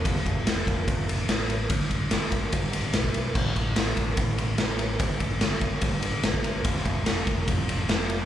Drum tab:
CC |----------------|----------------|x---------------|----------------|
RD |x-x-x-x-x-x-x-x-|x-x-x-x-x-x-x-x-|--x-x-x-x-x-x-x-|x-x-x-x-x-x-x-x-|
SD |-o--o-------o---|-o--o-------o---|----o-------o---|----o-------o---|
BD |o-o---o-o-------|o-o---o-o----o--|o-o---o-o-------|o-o---o-o----o--|

CC |----------------|
RD |x-x-x-x-x-x-x-x-|
SD |-o--o-------o---|
BD |o-o---o-o-------|